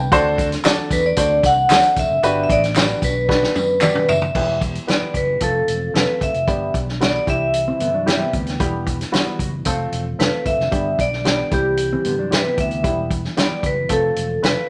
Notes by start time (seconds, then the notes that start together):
Already playing: C2
0.00 B4 G5
0.12 D2 A3 C4 D4 F#4 A4 C5, kick, closed hi-hat, tambourine
0.38 kick, closed hi-hat, tambourine
0.52 snare, closed hi-hat
0.64 D4 F#4 A4 D5, snare, clap, closed hi-hat, tambourine
0.78 muted fingered electric bass stroke
0.91 E2 B4, kick, closed hi-hat, tambourine
1.06 D5
1.16 D2 D4 F#4 A4 C5 D5, kick, closed hi-hat, tambourine
1.43 C2 F#5, kick, closed hi-hat, tambourine
1.70 D2 D4 F#4 A4 C5, snare, clap, closed hi-hat, tambourine
1.83 closed hi-hat
1.96 E1 E5, kick, closed hi-hat, tambourine
2.10 F#1
2.22 G1 D3 B3 D4 F#4 G4 B4, closed hi-hat, tambourine
2.44 E5
2.49 A1 D5, kick, closed hi-hat
2.64 snare, closed hi-hat
2.75 D4 F#4 G4 B4, snare, clap, closed hi-hat, tambourine
3.02 B1 B4, kick, closed hi-hat, tambourine
3.28 D4 F#4 G4 B4, kick, snare
3.44 snare
3.55 F#2, high tom, tambourine
3.81 D4 F#4 G4 B4 D5, clap, mid tom, tambourine
3.95 mid tom
4.08 F#1 E5, floor tom, tambourine
4.22 floor tom
4.35 E1 G3 B3 E4 G4 B4, kick, crash
4.61 kick, closed hi-hat
4.75 closed hi-hat
4.87 B3 E4 G4 B4 D5, snare, closed hi-hat
5.02 muted fingered electric bass stroke
5.14 F#1 B4, kick, closed hi-hat
5.40 F1 F3 A3 C4 F4 A4, kick, closed hi-hat
5.68 E1, closed hi-hat
5.94 F1 A3 C4 F4 A4 B4, snare, closed hi-hat
6.21 G1 E5, kick, closed hi-hat
6.34 F1, closed hi-hat
6.47 G1 D3 G3 B3 D4 G4, kick, closed hi-hat
6.74 B1, kick, closed hi-hat
6.89 snare
7.00 G3 B3 D4 F#4 D5, snare, closed hi-hat
7.16 D5
7.27 C2 C3 E3 G3 C4 E4 G4 E5, kick, closed hi-hat
7.54 closed hi-hat
7.68 E3 C4
7.80 G2 D3 B3, closed hi-hat
7.94 F#3 D4
8.06 G3 C4 E4 G4, snare, closed hi-hat
8.21 B3 G4
8.33 D2, kick, closed hi-hat
8.46 snare, closed hi-hat
8.60 E1 G3 B3 E4 G4, kick, closed hi-hat
8.87 kick, closed hi-hat
9.01 snare, closed hi-hat
9.12 G3 B3 E4 F#4, snare, closed hi-hat
9.26 muted fingered electric bass stroke
9.39 F#1, kick, closed hi-hat
9.65 F1 F3 A3 C4 F4 A4, kick, closed hi-hat
9.92 E1, closed hi-hat
10.19 F1 A3 C4 F4 A4 B4, snare, closed hi-hat
10.45 G1 E5, kick, closed hi-hat
10.59 F1, snare
10.71 G1 D3 G3 B3 D4 G4, kick, closed hi-hat
10.99 B1 D5, kick, closed hi-hat
11.13 snare
11.25 G3 B3 D4 G4 D5, snare, closed hi-hat
11.51 C2 C3 E3 G3 C4 E4 G4, kick, closed hi-hat
11.77 closed hi-hat
11.93 E3 C4
12.05 G2 D3 B3, closed hi-hat
12.19 F#3 D4
12.31 G3 C4 E4 G4 B4, snare, closed hi-hat
12.46 B3 G4
12.57 D2 E5, kick, closed hi-hat
12.71 closed hi-hat
12.83 E1 G3 B3 E4 G4, kick, closed hi-hat
13.11 kick, closed hi-hat
13.25 snare
13.37 G3 B3 E4 G4 D5, snare, closed hi-hat
13.51 muted fingered electric bass stroke
13.63 F#1 B4, kick, closed hi-hat
13.89 F1 F3 A3 C4 F4 A4, kick, closed hi-hat
14.16 E1, closed hi-hat
14.42 F1 A3 C4 F4 B4, snare, closed hi-hat